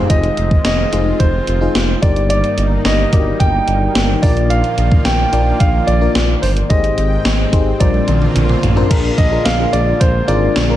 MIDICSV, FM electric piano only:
0, 0, Header, 1, 2, 480
1, 0, Start_track
1, 0, Tempo, 550459
1, 86, Time_signature, 4, 2, 24, 8
1, 9387, End_track
2, 0, Start_track
2, 0, Title_t, "FM electric piano"
2, 0, Program_c, 0, 5
2, 0, Control_c, 0, 64, 127
2, 0, Note_on_c, 0, 63, 66
2, 0, Note_on_c, 0, 67, 62
2, 0, Note_on_c, 0, 68, 62
2, 0, Note_on_c, 0, 72, 73
2, 82, Note_off_c, 0, 63, 0
2, 82, Note_on_c, 0, 63, 71
2, 85, Note_on_c, 0, 65, 61
2, 89, Note_off_c, 0, 68, 0
2, 89, Note_on_c, 0, 68, 64
2, 93, Note_off_c, 0, 72, 0
2, 93, Note_on_c, 0, 72, 79
2, 97, Control_c, 0, 64, 0
2, 98, Note_off_c, 0, 67, 0
2, 237, Control_c, 0, 64, 127
2, 566, Note_off_c, 0, 63, 0
2, 568, Note_off_c, 0, 65, 0
2, 570, Note_off_c, 0, 68, 0
2, 572, Note_off_c, 0, 72, 0
2, 802, Note_on_c, 0, 63, 68
2, 807, Note_on_c, 0, 65, 63
2, 811, Note_on_c, 0, 68, 62
2, 813, Note_on_c, 0, 72, 69
2, 1206, Note_off_c, 0, 63, 0
2, 1208, Note_off_c, 0, 65, 0
2, 1210, Note_off_c, 0, 68, 0
2, 1211, Note_off_c, 0, 72, 0
2, 1402, Note_on_c, 0, 63, 66
2, 1407, Note_on_c, 0, 65, 62
2, 1411, Note_on_c, 0, 68, 62
2, 1414, Note_on_c, 0, 72, 69
2, 1752, Note_off_c, 0, 63, 0
2, 1762, Note_on_c, 0, 63, 70
2, 1765, Note_on_c, 0, 67, 68
2, 1766, Note_off_c, 0, 65, 0
2, 1766, Note_on_c, 0, 43, 60
2, 1768, Note_off_c, 0, 68, 0
2, 1768, Note_on_c, 0, 70, 65
2, 1770, Note_off_c, 0, 72, 0
2, 1772, Note_on_c, 0, 74, 80
2, 1776, Control_c, 0, 64, 0
2, 1934, Control_c, 0, 64, 127
2, 2451, Note_off_c, 0, 43, 0
2, 2532, Note_off_c, 0, 63, 0
2, 2534, Note_off_c, 0, 67, 0
2, 2535, Note_off_c, 0, 70, 0
2, 2537, Note_off_c, 0, 74, 0
2, 2723, Note_on_c, 0, 63, 64
2, 2727, Note_on_c, 0, 66, 50
2, 2731, Note_on_c, 0, 70, 63
2, 2734, Note_on_c, 0, 74, 75
2, 2784, Note_off_c, 0, 66, 0
2, 2784, Note_on_c, 0, 67, 61
2, 3367, Note_off_c, 0, 63, 0
2, 3371, Note_off_c, 0, 70, 0
2, 3373, Note_off_c, 0, 74, 0
2, 3398, Note_off_c, 0, 67, 0
2, 3682, Note_on_c, 0, 62, 73
2, 3685, Note_on_c, 0, 65, 68
2, 3687, Note_on_c, 0, 46, 60
2, 3689, Note_on_c, 0, 70, 68
2, 3692, Note_on_c, 0, 74, 77
2, 3698, Control_c, 0, 64, 0
2, 3876, Control_c, 0, 64, 127
2, 4372, Note_off_c, 0, 46, 0
2, 4452, Note_off_c, 0, 62, 0
2, 4454, Note_off_c, 0, 65, 0
2, 4455, Note_off_c, 0, 70, 0
2, 4457, Note_off_c, 0, 74, 0
2, 4642, Note_on_c, 0, 62, 65
2, 4645, Note_on_c, 0, 65, 63
2, 4647, Note_on_c, 0, 70, 61
2, 4652, Note_on_c, 0, 74, 77
2, 5046, Note_off_c, 0, 62, 0
2, 5047, Note_off_c, 0, 65, 0
2, 5049, Note_off_c, 0, 70, 0
2, 5051, Note_off_c, 0, 74, 0
2, 5241, Note_on_c, 0, 62, 70
2, 5244, Note_on_c, 0, 65, 65
2, 5247, Note_on_c, 0, 70, 66
2, 5251, Note_on_c, 0, 74, 74
2, 5645, Note_off_c, 0, 62, 0
2, 5647, Note_off_c, 0, 65, 0
2, 5648, Note_off_c, 0, 70, 0
2, 5650, Note_off_c, 0, 74, 0
2, 5840, Note_on_c, 0, 63, 71
2, 5843, Note_on_c, 0, 67, 67
2, 5845, Note_on_c, 0, 44, 65
2, 5847, Note_on_c, 0, 68, 69
2, 5850, Note_on_c, 0, 72, 76
2, 5857, Control_c, 0, 64, 0
2, 5999, Control_c, 0, 64, 127
2, 6325, Note_off_c, 0, 63, 0
2, 6327, Note_off_c, 0, 67, 0
2, 6329, Note_off_c, 0, 68, 0
2, 6330, Note_off_c, 0, 72, 0
2, 6531, Note_off_c, 0, 44, 0
2, 6559, Note_on_c, 0, 63, 80
2, 6562, Note_on_c, 0, 67, 71
2, 6566, Note_on_c, 0, 68, 76
2, 6569, Note_on_c, 0, 72, 87
2, 6798, Note_off_c, 0, 72, 0
2, 6798, Note_on_c, 0, 62, 69
2, 6802, Note_on_c, 0, 65, 63
2, 6803, Note_off_c, 0, 63, 0
2, 6803, Note_on_c, 0, 46, 58
2, 6804, Note_off_c, 0, 67, 0
2, 6804, Note_on_c, 0, 70, 69
2, 6806, Note_off_c, 0, 68, 0
2, 6809, Note_on_c, 0, 72, 80
2, 6818, Control_c, 0, 64, 0
2, 6947, Control_c, 0, 64, 127
2, 7474, Note_off_c, 0, 62, 0
2, 7476, Note_off_c, 0, 65, 0
2, 7477, Note_off_c, 0, 70, 0
2, 7479, Note_off_c, 0, 72, 0
2, 7490, Note_off_c, 0, 46, 0
2, 7639, Note_on_c, 0, 62, 84
2, 7644, Note_on_c, 0, 65, 76
2, 7647, Note_on_c, 0, 70, 76
2, 7651, Note_on_c, 0, 72, 90
2, 7723, Note_off_c, 0, 62, 0
2, 7725, Note_off_c, 0, 65, 0
2, 7727, Note_off_c, 0, 70, 0
2, 7729, Note_off_c, 0, 72, 0
2, 7760, Note_on_c, 0, 62, 82
2, 7763, Note_on_c, 0, 65, 77
2, 7764, Note_on_c, 0, 46, 75
2, 7767, Note_on_c, 0, 68, 80
2, 7769, Note_on_c, 0, 70, 95
2, 7776, Control_c, 0, 64, 0
2, 7929, Control_c, 0, 64, 127
2, 8004, Note_off_c, 0, 62, 0
2, 8006, Note_off_c, 0, 65, 0
2, 8008, Note_off_c, 0, 68, 0
2, 8009, Note_off_c, 0, 70, 0
2, 8121, Note_on_c, 0, 62, 74
2, 8124, Note_on_c, 0, 65, 66
2, 8129, Note_on_c, 0, 68, 65
2, 8132, Note_on_c, 0, 70, 80
2, 8284, Note_off_c, 0, 62, 0
2, 8286, Note_off_c, 0, 65, 0
2, 8288, Note_off_c, 0, 68, 0
2, 8290, Note_off_c, 0, 70, 0
2, 8362, Note_on_c, 0, 62, 68
2, 8366, Note_on_c, 0, 65, 63
2, 8370, Note_on_c, 0, 68, 59
2, 8372, Note_on_c, 0, 70, 73
2, 8450, Note_off_c, 0, 46, 0
2, 8766, Note_off_c, 0, 62, 0
2, 8768, Note_off_c, 0, 65, 0
2, 8770, Note_off_c, 0, 68, 0
2, 8771, Note_off_c, 0, 70, 0
2, 8961, Note_on_c, 0, 62, 69
2, 8964, Note_on_c, 0, 65, 62
2, 8969, Note_on_c, 0, 68, 62
2, 8972, Note_on_c, 0, 70, 77
2, 9205, Note_off_c, 0, 62, 0
2, 9206, Note_off_c, 0, 65, 0
2, 9208, Note_off_c, 0, 68, 0
2, 9210, Note_off_c, 0, 70, 0
2, 9324, Note_on_c, 0, 62, 68
2, 9327, Note_on_c, 0, 65, 62
2, 9329, Note_on_c, 0, 68, 64
2, 9334, Note_on_c, 0, 70, 78
2, 9387, Note_off_c, 0, 62, 0
2, 9387, Note_off_c, 0, 65, 0
2, 9387, Note_off_c, 0, 68, 0
2, 9387, Note_off_c, 0, 70, 0
2, 9387, End_track
0, 0, End_of_file